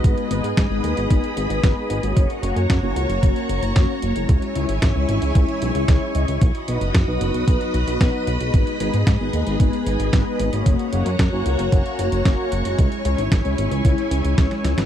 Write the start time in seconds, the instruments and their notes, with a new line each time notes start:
Already playing: analog polysynth G#3 B3 D#4 B4, string machine D#5
0.04 analog synth bass G#1, string machine G#4 B5 D#6, kick, closed hi-hat
0.18 closed hi-hat
0.31 analog synth bass G#1, analog polysynth G#3 B3 D#4 B4, closed hi-hat
0.44 analog synth bass G#2, closed hi-hat
0.57 analog synth bass G#2, kick, snare, closed hi-hat
0.70 analog synth bass G#1, analog polysynth G#3 B3 D#4 B4
0.84 analog synth bass D#2, closed hi-hat
0.97 analog synth bass G#1, closed hi-hat
1.10 analog synth bass G#1, analog polysynth G#3 B3 D#4 B4, kick, closed hi-hat
1.24 closed hi-hat
1.37 analog synth bass G#1, closed hi-hat
1.50 analog synth bass G#1, closed hi-hat
1.63 analog synth bass G#1, analog polysynth G#3 B3 D#4 B4, kick, snare, closed hi-hat
1.90 analog synth bass G#1, closed hi-hat
2.03 analog synth bass G#1, analog polysynth A#3 C#4 F#4 C#5, closed hi-hat
2.17 analog synth bass F#1, string machine F#4 C#5 A#5 C#6, kick, closed hi-hat
2.30 closed hi-hat
2.43 analog synth bass F#1, analog polysynth A#3 C#4 F#4 C#5, closed hi-hat
2.56 analog synth bass F#2, closed hi-hat
2.70 analog synth bass F#2, kick, snare, closed hi-hat
2.83 analog synth bass F#1, analog polysynth A#3 C#4 F#4 C#5
2.96 analog synth bass C#2, closed hi-hat
3.09 analog synth bass F#1, closed hi-hat
3.23 analog synth bass F#1, analog polysynth A#3 C#4 F#4 C#5, kick, closed hi-hat
3.36 closed hi-hat
3.49 analog synth bass F#1, closed hi-hat
3.63 analog synth bass F#1, closed hi-hat
3.76 analog synth bass F#1, analog polysynth A#3 C#4 F#4 C#5, kick, snare, closed hi-hat
4.02 analog synth bass F#1, closed hi-hat
4.16 analog synth bass F#1, analog polysynth G#3 C#4 E4 C#5, closed hi-hat
4.29 analog synth bass C#2, string machine E4 G#5 C#6, kick, closed hi-hat
4.42 closed hi-hat
4.55 analog synth bass C#2, analog polysynth G#3 C#4 E4 C#5, closed hi-hat
4.69 analog synth bass G#1, closed hi-hat
4.82 analog synth bass G#1, kick, snare, closed hi-hat
4.96 analog synth bass C#2, analog polysynth G#3 C#4 E4 C#5
5.09 analog synth bass G#1, closed hi-hat
5.22 analog synth bass C#2, closed hi-hat
5.35 analog synth bass C#2, analog polysynth G#3 C#4 E4 C#5, kick, closed hi-hat
5.48 closed hi-hat
5.62 analog synth bass B1, closed hi-hat
5.75 analog synth bass C#2, closed hi-hat
5.88 analog synth bass C#2, analog polysynth G#3 C#4 E4 C#5, kick, snare, closed hi-hat
6.15 analog synth bass C#2, analog polysynth G#3 C#4 E4 D#5, closed hi-hat
6.28 analog synth bass C#2, analog polysynth G#3 C#4 E4 C#5, closed hi-hat
6.41 analog synth bass B1, string machine F#4 D#5 B5 D#6, kick, closed hi-hat
6.55 closed hi-hat
6.68 analog synth bass B1, analog polysynth F#3 B3 D#4 B4, closed hi-hat
6.81 analog synth bass F#1, closed hi-hat
6.94 analog synth bass F#1, kick, snare, closed hi-hat
7.08 analog synth bass B1, analog polysynth F#3 B3 D#4 B4
7.21 analog synth bass F#1, closed hi-hat
7.34 analog synth bass B1, closed hi-hat
7.48 analog synth bass B1, analog polysynth F#3 B3 D#4 B4, kick, closed hi-hat
7.61 closed hi-hat
7.74 analog synth bass B1, closed hi-hat
7.88 analog synth bass B1, closed hi-hat
8.01 analog synth bass B1, analog polysynth F#3 B3 D#4 B4, kick, snare, closed hi-hat
8.27 analog synth bass B1, closed hi-hat
8.41 analog synth bass B1, analog polysynth G#3 B3 D#4 B4, closed hi-hat
8.54 analog synth bass G#1, string machine G#4, kick, closed hi-hat
8.67 closed hi-hat
8.80 analog synth bass G#1, analog polysynth G#3 B3 D#4 B4, closed hi-hat
8.94 analog synth bass G#2, closed hi-hat
9.07 analog synth bass G#2, kick, snare, closed hi-hat
9.20 analog synth bass G#1, analog polysynth G#3 B3 D#4 B4
9.33 analog synth bass D#2, closed hi-hat
9.47 analog synth bass G#1, closed hi-hat
9.60 analog synth bass G#1, analog polysynth G#3 B3 D#4 B4, kick, closed hi-hat
9.73 closed hi-hat
9.87 analog synth bass G#1, closed hi-hat
10.00 analog synth bass G#1, closed hi-hat
10.13 analog synth bass G#1, analog polysynth G#3 B3 D#4 B4, kick, snare, closed hi-hat
10.40 analog synth bass G#1, closed hi-hat
10.53 analog synth bass G#1, analog polysynth A#3 C#4 F#4 C#5, closed hi-hat
10.66 analog synth bass F#1, string machine F#4 C#5 A#5 C#6, kick, closed hi-hat
10.79 closed hi-hat
10.93 analog synth bass F#1, analog polysynth A#3 C#4 F#4 C#5, closed hi-hat
11.06 analog synth bass F#2, closed hi-hat
11.19 analog synth bass F#2, kick, snare, closed hi-hat
11.33 analog synth bass F#1, analog polysynth A#3 C#4 F#4 C#5
11.46 analog synth bass C#2, closed hi-hat
11.59 analog synth bass F#1, closed hi-hat
11.72 analog synth bass F#1, analog polysynth A#3 C#4 F#4 C#5, kick, closed hi-hat
11.86 closed hi-hat
11.99 analog synth bass F#1, closed hi-hat
12.12 analog synth bass F#1, closed hi-hat
12.25 analog synth bass F#1, analog polysynth A#3 C#4 F#4 C#5, kick, snare, closed hi-hat
12.52 analog synth bass F#1, closed hi-hat
12.65 analog synth bass F#1, analog polysynth G#3 C#4 E4 C#5, closed hi-hat
12.78 analog synth bass C#2, string machine E4 G#5, kick, closed hi-hat
12.92 closed hi-hat
13.05 analog synth bass C#2, analog polysynth G#3 C#4 E4 C#5, closed hi-hat
13.18 analog synth bass G#1, closed hi-hat
13.32 analog synth bass G#1, kick, snare, closed hi-hat
13.45 analog synth bass C#2, analog polysynth G#3 C#4 E4 C#5, closed hi-hat
13.58 analog synth bass G#1, closed hi-hat
13.71 analog synth bass C#2, closed hi-hat
13.85 analog synth bass C#2, analog polysynth G#3 C#4 E4 C#5, kick, closed hi-hat
13.98 closed hi-hat
14.11 analog synth bass C#2, closed hi-hat
14.24 analog synth bass C#2, closed hi-hat
14.38 analog synth bass C#2, analog polysynth G#3 C#4 E4 C#5, kick, snare, closed hi-hat
14.51 snare, closed hi-hat
14.64 analog synth bass C#2, snare, closed hi-hat
14.78 analog synth bass G#1, analog polysynth F#3 B3 D#4 B4, snare, closed hi-hat